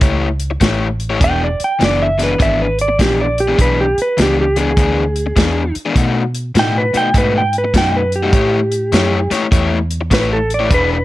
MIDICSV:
0, 0, Header, 1, 7, 480
1, 0, Start_track
1, 0, Tempo, 594059
1, 978, Time_signature, 4, 2, 24, 8
1, 8925, End_track
2, 0, Start_track
2, 0, Title_t, "Electric slide guitar"
2, 0, Program_c, 0, 29
2, 1003, Note_on_c, 0, 79, 101
2, 1147, Note_off_c, 0, 79, 0
2, 1165, Note_on_c, 0, 74, 88
2, 1308, Note_off_c, 0, 74, 0
2, 1327, Note_on_c, 0, 79, 81
2, 1469, Note_off_c, 0, 79, 0
2, 1489, Note_on_c, 0, 74, 86
2, 1630, Note_off_c, 0, 74, 0
2, 1636, Note_on_c, 0, 76, 96
2, 1783, Note_off_c, 0, 76, 0
2, 1805, Note_on_c, 0, 71, 86
2, 1948, Note_off_c, 0, 71, 0
2, 1958, Note_on_c, 0, 76, 103
2, 2105, Note_off_c, 0, 76, 0
2, 2115, Note_on_c, 0, 71, 85
2, 2263, Note_off_c, 0, 71, 0
2, 2274, Note_on_c, 0, 74, 84
2, 2423, Note_off_c, 0, 74, 0
2, 2433, Note_on_c, 0, 67, 91
2, 2582, Note_off_c, 0, 67, 0
2, 2596, Note_on_c, 0, 74, 78
2, 2743, Note_off_c, 0, 74, 0
2, 2750, Note_on_c, 0, 67, 96
2, 2900, Note_off_c, 0, 67, 0
2, 2921, Note_on_c, 0, 71, 84
2, 3066, Note_off_c, 0, 71, 0
2, 3076, Note_on_c, 0, 67, 77
2, 3224, Note_off_c, 0, 67, 0
2, 3246, Note_on_c, 0, 71, 87
2, 3389, Note_off_c, 0, 71, 0
2, 3413, Note_on_c, 0, 67, 88
2, 3552, Note_off_c, 0, 67, 0
2, 3564, Note_on_c, 0, 67, 90
2, 3708, Note_off_c, 0, 67, 0
2, 3721, Note_on_c, 0, 68, 97
2, 4641, Note_off_c, 0, 68, 0
2, 5328, Note_on_c, 0, 79, 90
2, 5469, Note_off_c, 0, 79, 0
2, 5477, Note_on_c, 0, 71, 92
2, 5623, Note_off_c, 0, 71, 0
2, 5634, Note_on_c, 0, 79, 104
2, 5782, Note_off_c, 0, 79, 0
2, 5802, Note_on_c, 0, 71, 99
2, 5946, Note_off_c, 0, 71, 0
2, 5961, Note_on_c, 0, 79, 95
2, 6105, Note_off_c, 0, 79, 0
2, 6126, Note_on_c, 0, 71, 91
2, 6267, Note_off_c, 0, 71, 0
2, 6283, Note_on_c, 0, 79, 89
2, 6426, Note_off_c, 0, 79, 0
2, 6436, Note_on_c, 0, 71, 87
2, 6582, Note_off_c, 0, 71, 0
2, 6590, Note_on_c, 0, 67, 101
2, 7514, Note_off_c, 0, 67, 0
2, 8191, Note_on_c, 0, 71, 100
2, 8338, Note_off_c, 0, 71, 0
2, 8347, Note_on_c, 0, 69, 86
2, 8496, Note_off_c, 0, 69, 0
2, 8518, Note_on_c, 0, 74, 81
2, 8661, Note_off_c, 0, 74, 0
2, 8681, Note_on_c, 0, 71, 91
2, 8822, Note_off_c, 0, 71, 0
2, 8836, Note_on_c, 0, 71, 86
2, 8925, Note_off_c, 0, 71, 0
2, 8925, End_track
3, 0, Start_track
3, 0, Title_t, "Overdriven electric guitar"
3, 0, Program_c, 1, 29
3, 9, Note_on_c, 1, 57, 76
3, 12, Note_on_c, 1, 64, 85
3, 16, Note_on_c, 1, 67, 86
3, 17, Note_on_c, 1, 73, 84
3, 216, Note_off_c, 1, 57, 0
3, 217, Note_off_c, 1, 64, 0
3, 219, Note_off_c, 1, 67, 0
3, 220, Note_off_c, 1, 73, 0
3, 489, Note_on_c, 1, 57, 82
3, 495, Note_on_c, 1, 64, 75
3, 496, Note_on_c, 1, 67, 88
3, 500, Note_on_c, 1, 73, 90
3, 696, Note_off_c, 1, 57, 0
3, 699, Note_off_c, 1, 64, 0
3, 700, Note_off_c, 1, 67, 0
3, 702, Note_off_c, 1, 73, 0
3, 887, Note_on_c, 1, 67, 89
3, 887, Note_on_c, 1, 73, 75
3, 893, Note_on_c, 1, 64, 74
3, 896, Note_on_c, 1, 57, 73
3, 964, Note_off_c, 1, 57, 0
3, 966, Note_on_c, 1, 52, 88
3, 967, Note_off_c, 1, 64, 0
3, 967, Note_on_c, 1, 59, 88
3, 970, Note_on_c, 1, 62, 91
3, 973, Note_off_c, 1, 67, 0
3, 975, Note_off_c, 1, 73, 0
3, 977, Note_on_c, 1, 68, 101
3, 1175, Note_off_c, 1, 52, 0
3, 1176, Note_off_c, 1, 59, 0
3, 1177, Note_off_c, 1, 62, 0
3, 1181, Note_off_c, 1, 68, 0
3, 1448, Note_on_c, 1, 52, 81
3, 1455, Note_on_c, 1, 59, 98
3, 1458, Note_on_c, 1, 68, 98
3, 1460, Note_on_c, 1, 62, 95
3, 1656, Note_off_c, 1, 52, 0
3, 1660, Note_off_c, 1, 59, 0
3, 1661, Note_off_c, 1, 68, 0
3, 1662, Note_off_c, 1, 62, 0
3, 1762, Note_on_c, 1, 52, 76
3, 1767, Note_on_c, 1, 59, 69
3, 1770, Note_on_c, 1, 68, 79
3, 1771, Note_on_c, 1, 62, 79
3, 1876, Note_off_c, 1, 52, 0
3, 1879, Note_off_c, 1, 59, 0
3, 1880, Note_off_c, 1, 68, 0
3, 1881, Note_off_c, 1, 62, 0
3, 1930, Note_on_c, 1, 52, 74
3, 1933, Note_on_c, 1, 59, 79
3, 1939, Note_on_c, 1, 62, 84
3, 1940, Note_on_c, 1, 68, 81
3, 2138, Note_off_c, 1, 52, 0
3, 2139, Note_off_c, 1, 59, 0
3, 2142, Note_off_c, 1, 62, 0
3, 2143, Note_off_c, 1, 68, 0
3, 2416, Note_on_c, 1, 52, 85
3, 2418, Note_on_c, 1, 59, 77
3, 2420, Note_on_c, 1, 62, 91
3, 2424, Note_on_c, 1, 68, 80
3, 2621, Note_off_c, 1, 52, 0
3, 2621, Note_off_c, 1, 59, 0
3, 2623, Note_off_c, 1, 62, 0
3, 2625, Note_off_c, 1, 68, 0
3, 2809, Note_on_c, 1, 68, 86
3, 2813, Note_on_c, 1, 62, 80
3, 2816, Note_on_c, 1, 59, 83
3, 2819, Note_on_c, 1, 52, 77
3, 2882, Note_off_c, 1, 52, 0
3, 2885, Note_off_c, 1, 59, 0
3, 2885, Note_off_c, 1, 62, 0
3, 2891, Note_off_c, 1, 68, 0
3, 2891, Note_on_c, 1, 52, 90
3, 2895, Note_on_c, 1, 59, 80
3, 2895, Note_on_c, 1, 62, 99
3, 2901, Note_on_c, 1, 68, 94
3, 3098, Note_off_c, 1, 52, 0
3, 3100, Note_off_c, 1, 59, 0
3, 3100, Note_off_c, 1, 62, 0
3, 3103, Note_off_c, 1, 68, 0
3, 3372, Note_on_c, 1, 52, 90
3, 3377, Note_on_c, 1, 59, 84
3, 3379, Note_on_c, 1, 62, 98
3, 3383, Note_on_c, 1, 68, 91
3, 3578, Note_off_c, 1, 52, 0
3, 3581, Note_off_c, 1, 59, 0
3, 3582, Note_off_c, 1, 62, 0
3, 3584, Note_off_c, 1, 68, 0
3, 3688, Note_on_c, 1, 52, 77
3, 3690, Note_on_c, 1, 59, 78
3, 3692, Note_on_c, 1, 62, 78
3, 3697, Note_on_c, 1, 68, 68
3, 3799, Note_off_c, 1, 52, 0
3, 3800, Note_off_c, 1, 59, 0
3, 3801, Note_off_c, 1, 62, 0
3, 3804, Note_off_c, 1, 68, 0
3, 3852, Note_on_c, 1, 52, 77
3, 3857, Note_on_c, 1, 59, 75
3, 3861, Note_on_c, 1, 62, 93
3, 3862, Note_on_c, 1, 68, 93
3, 4059, Note_off_c, 1, 52, 0
3, 4061, Note_off_c, 1, 59, 0
3, 4063, Note_off_c, 1, 62, 0
3, 4063, Note_off_c, 1, 68, 0
3, 4330, Note_on_c, 1, 52, 79
3, 4334, Note_on_c, 1, 59, 78
3, 4340, Note_on_c, 1, 62, 79
3, 4340, Note_on_c, 1, 68, 96
3, 4538, Note_off_c, 1, 52, 0
3, 4539, Note_off_c, 1, 59, 0
3, 4542, Note_off_c, 1, 62, 0
3, 4542, Note_off_c, 1, 68, 0
3, 4731, Note_on_c, 1, 68, 81
3, 4733, Note_on_c, 1, 62, 80
3, 4737, Note_on_c, 1, 59, 70
3, 4741, Note_on_c, 1, 52, 66
3, 4811, Note_on_c, 1, 47, 78
3, 4814, Note_off_c, 1, 59, 0
3, 4814, Note_off_c, 1, 62, 0
3, 4817, Note_off_c, 1, 68, 0
3, 4817, Note_on_c, 1, 57, 95
3, 4817, Note_on_c, 1, 63, 89
3, 4821, Note_on_c, 1, 66, 93
3, 4822, Note_off_c, 1, 52, 0
3, 5017, Note_off_c, 1, 47, 0
3, 5020, Note_off_c, 1, 57, 0
3, 5021, Note_off_c, 1, 63, 0
3, 5023, Note_off_c, 1, 66, 0
3, 5292, Note_on_c, 1, 47, 94
3, 5295, Note_on_c, 1, 57, 100
3, 5299, Note_on_c, 1, 63, 105
3, 5303, Note_on_c, 1, 66, 102
3, 5498, Note_off_c, 1, 47, 0
3, 5499, Note_off_c, 1, 57, 0
3, 5501, Note_off_c, 1, 63, 0
3, 5503, Note_off_c, 1, 66, 0
3, 5604, Note_on_c, 1, 47, 74
3, 5608, Note_on_c, 1, 57, 66
3, 5612, Note_on_c, 1, 63, 81
3, 5612, Note_on_c, 1, 66, 84
3, 5716, Note_off_c, 1, 47, 0
3, 5718, Note_off_c, 1, 57, 0
3, 5720, Note_off_c, 1, 63, 0
3, 5720, Note_off_c, 1, 66, 0
3, 5769, Note_on_c, 1, 47, 81
3, 5771, Note_on_c, 1, 57, 85
3, 5778, Note_on_c, 1, 63, 77
3, 5780, Note_on_c, 1, 66, 83
3, 5976, Note_off_c, 1, 47, 0
3, 5977, Note_off_c, 1, 57, 0
3, 5980, Note_off_c, 1, 63, 0
3, 5981, Note_off_c, 1, 66, 0
3, 6253, Note_on_c, 1, 47, 82
3, 6258, Note_on_c, 1, 57, 83
3, 6259, Note_on_c, 1, 63, 94
3, 6261, Note_on_c, 1, 66, 87
3, 6458, Note_off_c, 1, 47, 0
3, 6460, Note_off_c, 1, 57, 0
3, 6461, Note_off_c, 1, 63, 0
3, 6462, Note_off_c, 1, 66, 0
3, 6647, Note_on_c, 1, 66, 86
3, 6651, Note_on_c, 1, 63, 83
3, 6657, Note_on_c, 1, 57, 77
3, 6659, Note_on_c, 1, 47, 67
3, 6722, Note_off_c, 1, 57, 0
3, 6731, Note_on_c, 1, 57, 83
3, 6732, Note_off_c, 1, 63, 0
3, 6733, Note_off_c, 1, 66, 0
3, 6736, Note_on_c, 1, 64, 87
3, 6736, Note_on_c, 1, 67, 86
3, 6740, Note_off_c, 1, 47, 0
3, 6741, Note_on_c, 1, 73, 86
3, 6936, Note_off_c, 1, 57, 0
3, 6939, Note_off_c, 1, 64, 0
3, 6939, Note_off_c, 1, 67, 0
3, 6941, Note_off_c, 1, 73, 0
3, 7211, Note_on_c, 1, 57, 85
3, 7217, Note_on_c, 1, 64, 81
3, 7217, Note_on_c, 1, 67, 92
3, 7221, Note_on_c, 1, 73, 101
3, 7416, Note_off_c, 1, 57, 0
3, 7419, Note_off_c, 1, 64, 0
3, 7419, Note_off_c, 1, 67, 0
3, 7421, Note_off_c, 1, 73, 0
3, 7520, Note_on_c, 1, 57, 72
3, 7526, Note_on_c, 1, 64, 71
3, 7528, Note_on_c, 1, 67, 83
3, 7530, Note_on_c, 1, 73, 87
3, 7633, Note_off_c, 1, 57, 0
3, 7636, Note_off_c, 1, 64, 0
3, 7637, Note_off_c, 1, 67, 0
3, 7638, Note_off_c, 1, 73, 0
3, 7686, Note_on_c, 1, 57, 84
3, 7690, Note_on_c, 1, 64, 84
3, 7691, Note_on_c, 1, 67, 82
3, 7697, Note_on_c, 1, 73, 80
3, 7893, Note_off_c, 1, 57, 0
3, 7895, Note_off_c, 1, 64, 0
3, 7895, Note_off_c, 1, 67, 0
3, 7898, Note_off_c, 1, 73, 0
3, 8167, Note_on_c, 1, 57, 88
3, 8171, Note_on_c, 1, 64, 78
3, 8174, Note_on_c, 1, 67, 93
3, 8175, Note_on_c, 1, 73, 84
3, 8373, Note_off_c, 1, 57, 0
3, 8375, Note_off_c, 1, 64, 0
3, 8376, Note_off_c, 1, 67, 0
3, 8377, Note_off_c, 1, 73, 0
3, 8560, Note_on_c, 1, 73, 82
3, 8563, Note_on_c, 1, 64, 83
3, 8563, Note_on_c, 1, 67, 71
3, 8569, Note_on_c, 1, 57, 76
3, 8644, Note_off_c, 1, 64, 0
3, 8644, Note_on_c, 1, 52, 80
3, 8646, Note_off_c, 1, 67, 0
3, 8648, Note_on_c, 1, 62, 93
3, 8649, Note_off_c, 1, 73, 0
3, 8649, Note_on_c, 1, 68, 103
3, 8653, Note_off_c, 1, 57, 0
3, 8655, Note_on_c, 1, 71, 90
3, 8851, Note_off_c, 1, 52, 0
3, 8853, Note_off_c, 1, 62, 0
3, 8854, Note_off_c, 1, 68, 0
3, 8856, Note_off_c, 1, 71, 0
3, 8925, End_track
4, 0, Start_track
4, 0, Title_t, "Fingered electric bass"
4, 0, Program_c, 2, 33
4, 13, Note_on_c, 2, 37, 94
4, 481, Note_off_c, 2, 37, 0
4, 494, Note_on_c, 2, 33, 87
4, 962, Note_off_c, 2, 33, 0
4, 977, Note_on_c, 2, 28, 86
4, 1268, Note_off_c, 2, 28, 0
4, 1462, Note_on_c, 2, 30, 105
4, 1927, Note_off_c, 2, 30, 0
4, 1939, Note_on_c, 2, 32, 93
4, 2405, Note_off_c, 2, 32, 0
4, 2417, Note_on_c, 2, 34, 83
4, 2884, Note_off_c, 2, 34, 0
4, 2898, Note_on_c, 2, 35, 81
4, 3189, Note_off_c, 2, 35, 0
4, 3384, Note_on_c, 2, 37, 96
4, 3848, Note_off_c, 2, 37, 0
4, 3858, Note_on_c, 2, 38, 89
4, 4324, Note_off_c, 2, 38, 0
4, 4337, Note_on_c, 2, 40, 90
4, 4628, Note_off_c, 2, 40, 0
4, 4813, Note_on_c, 2, 47, 78
4, 5281, Note_off_c, 2, 47, 0
4, 5295, Note_on_c, 2, 45, 100
4, 5586, Note_off_c, 2, 45, 0
4, 5771, Note_on_c, 2, 44, 88
4, 6239, Note_off_c, 2, 44, 0
4, 6256, Note_on_c, 2, 42, 92
4, 6722, Note_off_c, 2, 42, 0
4, 6731, Note_on_c, 2, 45, 87
4, 7199, Note_off_c, 2, 45, 0
4, 7213, Note_on_c, 2, 42, 87
4, 7504, Note_off_c, 2, 42, 0
4, 7692, Note_on_c, 2, 40, 92
4, 8158, Note_off_c, 2, 40, 0
4, 8169, Note_on_c, 2, 33, 84
4, 8636, Note_off_c, 2, 33, 0
4, 8650, Note_on_c, 2, 28, 83
4, 8925, Note_off_c, 2, 28, 0
4, 8925, End_track
5, 0, Start_track
5, 0, Title_t, "Muted fingered electric bass strokes"
5, 1295, Note_on_c, 9, 29, 38
5, 1376, Note_off_c, 9, 29, 0
5, 3214, Note_on_c, 9, 29, 42
5, 3295, Note_off_c, 9, 29, 0
5, 4655, Note_on_c, 9, 29, 39
5, 4736, Note_off_c, 9, 29, 0
5, 5612, Note_on_c, 9, 29, 43
5, 5693, Note_off_c, 9, 29, 0
5, 7525, Note_on_c, 9, 29, 40
5, 7606, Note_off_c, 9, 29, 0
5, 8925, End_track
6, 0, Start_track
6, 0, Title_t, "Muted overdriven electric guitar strokes"
6, 409, Note_on_c, 9, 29, 54
6, 489, Note_off_c, 9, 29, 0
6, 2329, Note_on_c, 9, 29, 53
6, 2410, Note_off_c, 9, 29, 0
6, 4252, Note_on_c, 9, 29, 45
6, 4332, Note_off_c, 9, 29, 0
6, 6173, Note_on_c, 9, 29, 44
6, 6254, Note_off_c, 9, 29, 0
6, 8087, Note_on_c, 9, 29, 53
6, 8168, Note_off_c, 9, 29, 0
6, 8925, End_track
7, 0, Start_track
7, 0, Title_t, "Drums"
7, 9, Note_on_c, 9, 42, 92
7, 12, Note_on_c, 9, 36, 115
7, 90, Note_off_c, 9, 42, 0
7, 93, Note_off_c, 9, 36, 0
7, 320, Note_on_c, 9, 42, 63
7, 401, Note_off_c, 9, 42, 0
7, 490, Note_on_c, 9, 42, 84
7, 493, Note_on_c, 9, 36, 72
7, 505, Note_on_c, 9, 38, 120
7, 571, Note_off_c, 9, 42, 0
7, 573, Note_off_c, 9, 36, 0
7, 586, Note_off_c, 9, 38, 0
7, 806, Note_on_c, 9, 42, 59
7, 887, Note_off_c, 9, 42, 0
7, 977, Note_on_c, 9, 36, 114
7, 979, Note_on_c, 9, 42, 85
7, 1057, Note_off_c, 9, 36, 0
7, 1060, Note_off_c, 9, 42, 0
7, 1292, Note_on_c, 9, 42, 67
7, 1373, Note_off_c, 9, 42, 0
7, 1461, Note_on_c, 9, 42, 65
7, 1475, Note_on_c, 9, 38, 102
7, 1541, Note_off_c, 9, 42, 0
7, 1556, Note_off_c, 9, 38, 0
7, 1773, Note_on_c, 9, 42, 64
7, 1787, Note_on_c, 9, 38, 35
7, 1853, Note_off_c, 9, 42, 0
7, 1868, Note_off_c, 9, 38, 0
7, 1938, Note_on_c, 9, 36, 127
7, 1941, Note_on_c, 9, 42, 80
7, 2019, Note_off_c, 9, 36, 0
7, 2022, Note_off_c, 9, 42, 0
7, 2251, Note_on_c, 9, 42, 64
7, 2332, Note_off_c, 9, 42, 0
7, 2418, Note_on_c, 9, 36, 80
7, 2420, Note_on_c, 9, 42, 83
7, 2434, Note_on_c, 9, 38, 108
7, 2498, Note_off_c, 9, 36, 0
7, 2501, Note_off_c, 9, 42, 0
7, 2515, Note_off_c, 9, 38, 0
7, 2732, Note_on_c, 9, 42, 64
7, 2812, Note_off_c, 9, 42, 0
7, 2898, Note_on_c, 9, 36, 113
7, 2901, Note_on_c, 9, 42, 91
7, 2979, Note_off_c, 9, 36, 0
7, 2982, Note_off_c, 9, 42, 0
7, 3215, Note_on_c, 9, 42, 64
7, 3296, Note_off_c, 9, 42, 0
7, 3376, Note_on_c, 9, 42, 81
7, 3391, Note_on_c, 9, 38, 88
7, 3457, Note_off_c, 9, 42, 0
7, 3472, Note_off_c, 9, 38, 0
7, 3687, Note_on_c, 9, 42, 66
7, 3768, Note_off_c, 9, 42, 0
7, 3854, Note_on_c, 9, 36, 119
7, 3855, Note_on_c, 9, 42, 90
7, 3935, Note_off_c, 9, 36, 0
7, 3936, Note_off_c, 9, 42, 0
7, 4167, Note_on_c, 9, 42, 63
7, 4248, Note_off_c, 9, 42, 0
7, 4335, Note_on_c, 9, 36, 88
7, 4336, Note_on_c, 9, 42, 83
7, 4350, Note_on_c, 9, 38, 112
7, 4416, Note_off_c, 9, 36, 0
7, 4416, Note_off_c, 9, 42, 0
7, 4431, Note_off_c, 9, 38, 0
7, 4647, Note_on_c, 9, 42, 69
7, 4728, Note_off_c, 9, 42, 0
7, 4813, Note_on_c, 9, 36, 107
7, 4814, Note_on_c, 9, 42, 83
7, 4894, Note_off_c, 9, 36, 0
7, 4895, Note_off_c, 9, 42, 0
7, 5127, Note_on_c, 9, 42, 68
7, 5208, Note_off_c, 9, 42, 0
7, 5293, Note_on_c, 9, 42, 70
7, 5308, Note_on_c, 9, 38, 101
7, 5374, Note_off_c, 9, 42, 0
7, 5388, Note_off_c, 9, 38, 0
7, 5607, Note_on_c, 9, 42, 65
7, 5688, Note_off_c, 9, 42, 0
7, 5772, Note_on_c, 9, 36, 116
7, 5775, Note_on_c, 9, 42, 89
7, 5852, Note_off_c, 9, 36, 0
7, 5856, Note_off_c, 9, 42, 0
7, 6084, Note_on_c, 9, 42, 59
7, 6165, Note_off_c, 9, 42, 0
7, 6252, Note_on_c, 9, 36, 85
7, 6256, Note_on_c, 9, 42, 85
7, 6270, Note_on_c, 9, 38, 112
7, 6333, Note_off_c, 9, 36, 0
7, 6337, Note_off_c, 9, 42, 0
7, 6351, Note_off_c, 9, 38, 0
7, 6562, Note_on_c, 9, 42, 60
7, 6643, Note_off_c, 9, 42, 0
7, 6729, Note_on_c, 9, 36, 117
7, 6730, Note_on_c, 9, 42, 82
7, 6810, Note_off_c, 9, 36, 0
7, 6811, Note_off_c, 9, 42, 0
7, 7042, Note_on_c, 9, 42, 65
7, 7123, Note_off_c, 9, 42, 0
7, 7210, Note_on_c, 9, 42, 74
7, 7225, Note_on_c, 9, 38, 102
7, 7291, Note_off_c, 9, 42, 0
7, 7306, Note_off_c, 9, 38, 0
7, 7523, Note_on_c, 9, 42, 66
7, 7538, Note_on_c, 9, 38, 36
7, 7604, Note_off_c, 9, 42, 0
7, 7619, Note_off_c, 9, 38, 0
7, 7690, Note_on_c, 9, 36, 121
7, 7695, Note_on_c, 9, 42, 85
7, 7771, Note_off_c, 9, 36, 0
7, 7776, Note_off_c, 9, 42, 0
7, 8004, Note_on_c, 9, 42, 70
7, 8085, Note_off_c, 9, 42, 0
7, 8169, Note_on_c, 9, 36, 77
7, 8171, Note_on_c, 9, 42, 93
7, 8186, Note_on_c, 9, 38, 107
7, 8250, Note_off_c, 9, 36, 0
7, 8252, Note_off_c, 9, 42, 0
7, 8266, Note_off_c, 9, 38, 0
7, 8486, Note_on_c, 9, 42, 73
7, 8567, Note_off_c, 9, 42, 0
7, 8650, Note_on_c, 9, 42, 88
7, 8651, Note_on_c, 9, 36, 114
7, 8731, Note_off_c, 9, 36, 0
7, 8731, Note_off_c, 9, 42, 0
7, 8925, End_track
0, 0, End_of_file